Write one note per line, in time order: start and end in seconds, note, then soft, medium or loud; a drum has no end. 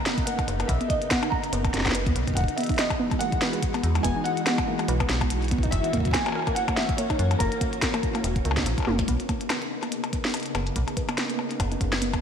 0.00 2.33 C#3 medium
0.00 2.33 A#3 medium
0.00 2.33 B3 medium
0.00 5.68 D#4 medium
0.00 0.23 A#5 loud
0.06 0.16 B3 loud
0.06 snare loud
0.06 closed hi-hat medium
0.18 kick loud
0.18 closed hi-hat soft
0.26 0.33 A#3 medium
0.26 0.69 F#5 loud
0.26 closed hi-hat loud
0.39 kick loud
0.39 closed hi-hat soft
0.39 percussion blips medium
0.48 0.64 F#1 medium
0.48 0.54 B4 medium
0.48 closed hi-hat medium
0.60 0.64 B3 medium
0.60 closed hi-hat soft
0.60 percussion blips medium
0.67 0.78 B1 loud
0.67 0.90 E5 loud
0.67 kick loud
0.67 closed hi-hat medium
0.81 0.89 B3 medium
0.81 closed hi-hat soft
0.88 1.11 D#5 medium
0.88 kick loud
0.88 closed hi-hat medium
1.02 closed hi-hat soft
1.09 1.21 B3 medium
1.09 1.32 F#5 medium
1.09 kick loud
1.09 snare loud
1.09 closed hi-hat medium
1.23 1.30 D#4 medium
1.23 closed hi-hat soft
1.23 percussion blips medium
1.30 1.90 A#5 loud
1.30 kick loud
1.44 closed hi-hat soft
1.53 1.69 F#1 loud
1.53 1.63 B3 loud
1.53 closed hi-hat medium
1.65 kick loud
1.65 closed hi-hat soft
1.65 percussion blips medium
1.74 2.08 F#1 medium
1.74 1.85 A#3 medium
1.74 snare medium
1.74 closed hi-hat medium
1.78 snare medium
1.81 snare medium
1.85 1.93 B3 medium
1.85 kick loud
1.85 snare medium
1.85 closed hi-hat soft
1.85 percussion blips medium
1.88 snare medium
1.92 2.06 B4 medium
1.92 snare loud
1.92 closed hi-hat medium
2.06 2.13 D#2 medium
2.06 2.11 B3 medium
2.06 kick loud
2.06 closed hi-hat soft
2.16 2.24 B1 medium
2.16 closed hi-hat medium
2.27 2.35 B3 medium
2.27 kick soft
2.27 closed hi-hat soft
2.30 kick medium
2.34 2.55 F#5 loud
2.34 kick medium
2.37 2.45 E1 loud
2.37 9.04 E3 medium
2.37 5.69 G#3 medium
2.37 9.04 F#4 medium
2.37 kick loud
2.37 closed hi-hat medium
2.41 kick medium
2.44 kick loud
2.48 closed hi-hat soft
2.56 2.68 B3 medium
2.56 2.79 E5 medium
2.56 closed hi-hat medium
2.61 closed hi-hat soft
2.63 closed hi-hat soft
2.66 closed hi-hat soft
2.69 2.77 D#4 medium
2.69 kick loud
2.69 closed hi-hat soft
2.72 closed hi-hat soft
2.74 closed hi-hat soft
2.76 3.21 D#5 medium
2.76 snare loud
2.76 closed hi-hat soft
2.79 closed hi-hat medium
2.90 kick loud
2.90 closed hi-hat soft
2.90 percussion blips medium
3.00 3.10 B3 loud
3.11 kick loud
3.11 closed hi-hat soft
3.11 percussion blips soft
3.19 3.27 A#3 medium
3.19 4.06 F#5 loud
3.19 closed hi-hat medium
3.32 kick loud
3.32 closed hi-hat soft
3.42 3.48 B4 medium
3.42 snare loud
3.42 closed hi-hat medium
3.53 3.58 B3 medium
3.53 closed hi-hat soft
3.63 kick loud
3.63 closed hi-hat medium
3.74 3.82 B3 medium
3.74 closed hi-hat soft
3.74 percussion blips medium
3.84 4.00 E2 medium
3.84 closed hi-hat medium
3.95 closed hi-hat soft
3.95 percussion blips medium
4.03 4.13 E1 loud
4.03 4.15 B3 medium
4.03 4.23 G#5 loud
4.03 kick loud
4.03 closed hi-hat medium
4.16 4.24 D#4 medium
4.24 5.05 F#5 loud
4.24 closed hi-hat medium
4.37 closed hi-hat soft
4.46 4.56 B3 loud
4.46 snare loud
4.46 closed hi-hat medium
4.58 kick loud
4.58 closed hi-hat soft
4.58 percussion blips medium
4.68 4.74 A#3 medium
4.79 closed hi-hat soft
4.79 percussion blips soft
4.88 5.05 B1 loud
4.88 4.94 B4 medium
4.88 closed hi-hat medium
5.00 5.05 B3 medium
5.00 kick loud
5.00 closed hi-hat soft
5.00 percussion blips medium
5.09 5.69 B1 medium
5.09 snare loud
5.09 closed hi-hat medium
5.21 5.29 B3 medium
5.21 kick loud
5.21 closed hi-hat soft
5.21 percussion blips medium
5.30 closed hi-hat medium
5.42 closed hi-hat soft
5.44 closed hi-hat soft
5.48 kick loud
5.48 closed hi-hat soft
5.51 5.61 B3 medium
5.51 closed hi-hat medium
5.58 kick medium
5.63 5.71 D#4 medium
5.63 kick medium
5.63 closed hi-hat soft
5.71 5.81 F#1 loud
5.71 9.05 A#3 medium
5.71 9.05 C#4 medium
5.71 6.15 E5 loud
5.71 kick medium
5.71 closed hi-hat loud
5.84 closed hi-hat soft
5.93 6.03 A#3 loud
5.93 kick medium
5.93 closed hi-hat medium
5.97 kick medium
6.00 kick medium
6.05 kick medium
6.05 closed hi-hat soft
6.07 kick medium
6.11 6.57 G#5 loud
6.11 kick loud
6.11 snare loud
6.11 closed hi-hat medium
6.14 6.20 A#3 medium
6.14 kick loud
6.26 closed hi-hat soft
6.26 percussion blips medium
6.28 percussion blips medium
6.32 percussion blips medium
6.35 6.41 A#4 medium
6.35 percussion blips soft
6.39 percussion blips soft
6.42 percussion blips soft
6.47 6.52 A#3 medium
6.47 kick loud
6.47 closed hi-hat soft
6.47 percussion blips medium
6.55 6.77 F#5 loud
6.55 closed hi-hat medium
6.68 6.76 A#3 medium
6.68 kick loud
6.68 closed hi-hat soft
6.68 percussion blips medium
6.76 6.98 E5 loud
6.76 snare loud
6.76 closed hi-hat medium
6.89 kick loud
6.89 closed hi-hat soft
6.97 7.08 A#3 medium
6.97 7.41 C#5 medium
6.97 closed hi-hat loud
7.10 7.18 D#4 medium
7.10 kick loud
7.10 closed hi-hat soft
7.10 percussion blips medium
7.19 7.35 F#2 medium
7.19 closed hi-hat medium
7.31 closed hi-hat soft
7.31 percussion blips medium
7.39 7.49 F#1 loud
7.39 7.50 A#3 loud
7.39 8.61 A#4 medium
7.39 kick loud
7.39 closed hi-hat loud
7.52 closed hi-hat soft
7.61 7.67 A#3 medium
7.61 kick loud
7.61 closed hi-hat medium
7.73 closed hi-hat soft
7.82 7.88 A#4 medium
7.82 kick loud
7.82 snare loud
7.82 closed hi-hat loud
7.94 7.99 A#3 medium
7.94 closed hi-hat soft
7.94 percussion blips medium
8.03 kick loud
8.03 closed hi-hat soft
8.15 8.23 A#3 medium
8.15 closed hi-hat soft
8.15 percussion blips medium
8.24 8.40 E1 loud
8.24 closed hi-hat medium
8.36 kick loud
8.36 closed hi-hat soft
8.45 8.65 C#2 medium
8.45 8.55 A#3 medium
8.45 closed hi-hat medium
8.51 percussion blips medium
8.57 8.65 D#4 medium
8.57 kick loud
8.57 snare loud
8.57 closed hi-hat soft
8.66 8.75 A#1 loud
8.66 closed hi-hat loud
8.78 kick loud
8.78 closed hi-hat soft
8.78 percussion blips soft
8.80 percussion blips soft
8.83 percussion blips soft
8.85 9.03 F#1 loud
8.85 8.97 A#3 loud
8.85 high tom medium
8.85 percussion blips medium
8.99 kick loud
8.99 snare medium
8.99 closed hi-hat soft
9.08 9.17 B1 loud
9.08 12.21 C#3 medium
9.08 12.21 A#3 medium
9.08 12.21 B3 medium
9.08 9.18 B3 medium
9.08 12.21 D#4 medium
9.08 kick medium
9.08 closed hi-hat medium
9.20 closed hi-hat soft
9.29 9.35 A#3 medium
9.29 kick loud
9.29 closed hi-hat medium
9.29 percussion blips medium
9.41 closed hi-hat soft
9.50 9.56 B4 medium
9.50 snare loud
9.50 closed hi-hat medium
9.50 percussion blips medium
9.62 9.67 B3 medium
9.62 closed hi-hat soft
9.83 9.91 B3 medium
9.83 closed hi-hat soft
9.83 percussion blips soft
9.92 closed hi-hat medium
10.04 closed hi-hat soft
10.04 percussion blips medium
10.13 10.23 B3 medium
10.13 kick loud
10.13 closed hi-hat medium
10.25 10.33 D#4 medium
10.25 snare loud
10.25 closed hi-hat soft
10.27 closed hi-hat soft
10.29 closed hi-hat soft
10.32 closed hi-hat soft
10.34 closed hi-hat medium
10.34 percussion blips medium
10.37 closed hi-hat soft
10.40 closed hi-hat soft
10.43 closed hi-hat soft
10.46 closed hi-hat soft
10.55 10.71 F#1 medium
10.55 10.65 B3 loud
10.55 closed hi-hat medium
10.55 percussion blips medium
10.67 closed hi-hat soft
10.76 10.85 B1 loud
10.76 10.82 A#3 medium
10.76 kick medium
10.76 closed hi-hat medium
10.88 closed hi-hat soft
10.88 percussion blips medium
10.97 11.03 B4 medium
10.97 kick loud
10.97 closed hi-hat medium
11.09 11.13 B3 medium
11.09 closed hi-hat soft
11.09 percussion blips medium
11.18 snare loud
11.18 closed hi-hat medium
11.30 11.37 B3 medium
11.30 closed hi-hat soft
11.39 percussion blips medium
11.51 closed hi-hat soft
11.60 11.76 F#1 loud
11.60 11.70 B3 medium
11.60 kick loud
11.60 closed hi-hat medium
11.60 percussion blips medium
11.72 11.79 D#4 medium
11.72 closed hi-hat soft
11.81 12.21 F#1 medium
11.81 kick loud
11.81 closed hi-hat medium
11.93 snare loud
11.93 closed hi-hat soft
11.93 percussion blips medium
12.02 12.12 B3 loud
12.02 closed hi-hat loud
12.13 kick loud
12.13 closed hi-hat soft
12.13 percussion blips medium